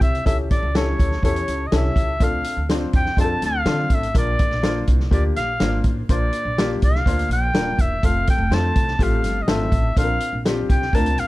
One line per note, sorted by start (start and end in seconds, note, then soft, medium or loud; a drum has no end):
0.00 0.21 C2 medium
0.00 0.15 C4 medium
0.00 0.15 E4 medium
0.00 0.15 G4 medium
0.00 0.15 C5 medium
0.00 0.25 E5 loud
0.00 kick medium
0.00 closed hi-hat medium
0.15 closed hi-hat soft
0.25 0.45 C#2 medium
0.25 0.63 C#4 medium
0.25 0.63 E4 medium
0.25 0.64 G4 medium
0.25 0.63 A4 medium
0.25 0.37 E5 loud
0.25 kick loud
0.25 closed hi-hat medium
0.51 0.78 D5 medium
0.51 kick loud
0.51 closed hi-hat medium
0.63 0.92 C#2 medium
0.75 1.12 C#4 medium
0.75 1.12 E4 medium
0.75 1.13 G4 medium
0.75 1.13 A4 medium
0.75 1.24 C#5 medium
0.75 snare loud
0.75 closed hi-hat medium
0.99 1.19 D2 medium
0.99 kick medium
0.99 closed hi-hat medium
1.11 snare soft
1.22 1.42 E2 loud
1.22 1.61 C#4 medium
1.22 1.61 E4 medium
1.22 1.61 G4 medium
1.22 1.61 A4 medium
1.22 1.68 C#5 medium
1.22 kick medium
1.22 closed hi-hat medium
1.36 closed hi-hat medium
1.48 1.67 C#2 medium
1.48 closed hi-hat medium
1.67 1.77 D#5 medium
1.72 1.92 C2 medium
1.72 2.10 C#4 medium
1.72 2.10 E4 medium
1.72 2.10 G4 medium
1.72 2.10 A4 medium
1.72 2.25 E5 loud
1.72 snare loud
1.72 closed hi-hat medium
1.96 2.15 C#2 medium
1.96 kick medium
1.96 closed hi-hat medium
2.20 2.40 D2 medium
2.20 2.59 C4 medium
2.20 2.59 D4 medium
2.20 2.59 F4 medium
2.20 2.59 A4 medium
2.20 2.68 F5 loud
2.20 kick loud
2.20 closed hi-hat medium
2.44 closed hi-hat medium
2.57 2.86 D2 medium
2.69 3.07 C4 medium
2.69 3.07 D4 medium
2.69 3.07 F4 medium
2.69 3.08 C5 medium
2.69 snare loud
2.69 closed hi-hat medium
2.93 3.13 E2 medium
2.93 3.18 G5 loud
2.93 kick medium
2.93 closed hi-hat medium
3.06 snare soft
3.17 3.37 F2 medium
3.17 3.55 C4 medium
3.17 3.55 D4 medium
3.17 3.55 F4 medium
3.17 3.24 G#4 medium
3.17 3.42 A5 loud
3.17 kick medium
3.17 closed hi-hat medium
3.24 3.59 A4 medium
3.42 3.61 D2 medium
3.42 3.96 F5 loud
3.42 snare soft
3.42 closed hi-hat medium
3.66 3.86 D3 medium
3.66 4.04 C4 medium
3.66 4.04 D4 medium
3.66 4.04 F4 medium
3.66 4.04 A4 medium
3.66 snare loud
3.66 closed hi-hat medium
3.90 4.10 A1 medium
3.90 kick loud
3.90 closed hi-hat medium
3.94 4.17 E5 medium
4.03 closed hi-hat medium
4.14 4.34 A#1 loud
4.14 4.52 A#3 medium
4.14 4.53 D4 medium
4.14 4.53 F4 medium
4.14 4.53 A#4 medium
4.14 4.86 D5 loud
4.14 kick loud
4.14 closed hi-hat loud
4.39 kick loud
4.39 closed hi-hat medium
4.51 4.81 A#1 loud
4.51 snare soft
4.63 5.01 A#3 medium
4.63 5.01 D4 medium
4.63 5.01 F4 medium
4.63 5.01 C5 medium
4.63 snare loud
4.63 closed hi-hat medium
4.87 5.07 C2 medium
4.87 kick medium
4.87 closed hi-hat medium
5.00 snare soft
5.11 5.31 D2 medium
5.11 5.49 A#3 medium
5.11 5.49 D4 medium
5.11 5.49 F4 medium
5.11 5.49 G4 medium
5.11 5.24 D5 medium
5.11 kick medium
5.11 closed hi-hat medium
5.36 5.56 A#1 medium
5.36 5.82 F5 loud
5.36 snare soft
5.36 closed hi-hat medium
5.60 5.80 G#1 medium
5.60 5.99 A#3 medium
5.60 5.99 D4 medium
5.60 5.99 F4 medium
5.60 5.99 C5 medium
5.60 snare medium
5.60 closed hi-hat medium
5.84 6.04 A1 medium
5.84 kick medium
5.84 closed hi-hat medium
6.09 6.29 A#1 medium
6.09 6.47 A#3 medium
6.09 6.47 D4 medium
6.09 6.47 F4 medium
6.09 6.47 C5 medium
6.09 6.79 D5 loud
6.09 kick loud
6.09 closed hi-hat medium
6.33 closed hi-hat medium
6.45 6.75 A#1 medium
6.58 6.95 A#3 medium
6.58 6.96 D4 medium
6.58 6.96 F4 medium
6.58 6.96 G4 medium
6.58 snare loud
6.58 closed hi-hat medium
6.82 7.02 C2 medium
6.82 7.29 F5 loud
6.82 kick medium
6.82 closed hi-hat medium
6.95 snare soft
7.06 7.25 D2 medium
7.06 7.44 A#3 medium
7.06 7.44 D4 medium
7.06 7.44 F4 medium
7.06 7.44 C5 medium
7.06 kick medium
7.06 closed hi-hat medium
7.19 closed hi-hat medium
7.29 7.49 A#1 loud
7.29 7.83 G5 loud
7.29 closed hi-hat medium
7.54 7.74 D#1 medium
7.54 7.92 A#3 medium
7.54 7.92 D4 medium
7.54 7.92 F4 medium
7.54 7.93 A#4 medium
7.54 snare loud
7.54 closed hi-hat medium
7.79 7.98 E1 medium
7.79 8.07 E5 loud
7.79 kick medium
7.79 closed hi-hat medium
8.03 8.22 F1 medium
8.03 8.41 A3 medium
8.03 8.41 C4 medium
8.03 8.41 F4 medium
8.03 8.41 A4 medium
8.03 8.29 F5 loud
8.03 kick loud
8.03 closed hi-hat medium
8.27 8.56 G5 loud
8.27 kick loud
8.27 closed hi-hat medium
8.38 8.48 F1 loud
8.51 8.71 F2 loud
8.51 8.89 A3 medium
8.51 8.89 C4 medium
8.51 8.89 F4 medium
8.51 8.89 C5 medium
8.51 9.05 A5 loud
8.51 snare loud
8.51 closed hi-hat medium
8.76 8.95 C2 medium
8.76 kick loud
8.76 closed hi-hat medium
8.88 snare soft
8.99 9.19 A1 medium
8.99 9.37 A3 medium
8.99 9.37 C4 medium
8.99 9.37 F4 medium
8.99 9.38 G4 medium
8.99 kick loud
8.99 closed hi-hat medium
9.03 9.44 F5 medium
9.23 9.43 G1 medium
9.23 snare soft
9.23 closed hi-hat medium
9.42 9.51 D#5 medium
9.48 9.67 G#1 medium
9.48 9.86 A3 medium
9.48 9.86 C4 medium
9.48 9.86 F4 medium
9.48 9.86 A4 medium
9.48 9.97 E5 medium
9.48 snare loud
9.48 closed hi-hat medium
9.72 9.92 A1 medium
9.72 kick loud
9.72 closed hi-hat medium
9.97 10.16 A#1 medium
9.97 10.34 C4 medium
9.97 10.35 D4 medium
9.97 10.35 F4 medium
9.97 10.03 A4 medium
9.97 10.40 F5 loud
9.97 kick loud
9.97 closed hi-hat loud
10.04 10.37 A#4 medium
10.20 closed hi-hat medium
10.33 10.62 A#1 medium
10.45 10.83 C4 medium
10.45 10.83 D4 medium
10.45 10.83 F4 medium
10.45 10.83 G4 medium
10.45 snare loud
10.45 closed hi-hat medium
10.69 10.89 C2 medium
10.69 10.96 G5 medium
10.69 kick medium
10.69 closed hi-hat medium
10.82 snare soft
10.93 11.17 D2 loud
10.93 11.27 C4 medium
10.93 11.27 D4 medium
10.93 11.27 F4 medium
10.93 11.27 A#4 medium
10.93 11.21 A5 loud
10.93 kick medium
10.93 closed hi-hat medium
11.06 closed hi-hat medium
11.17 11.27 A#1 medium
11.17 11.27 F5 loud
11.17 closed hi-hat medium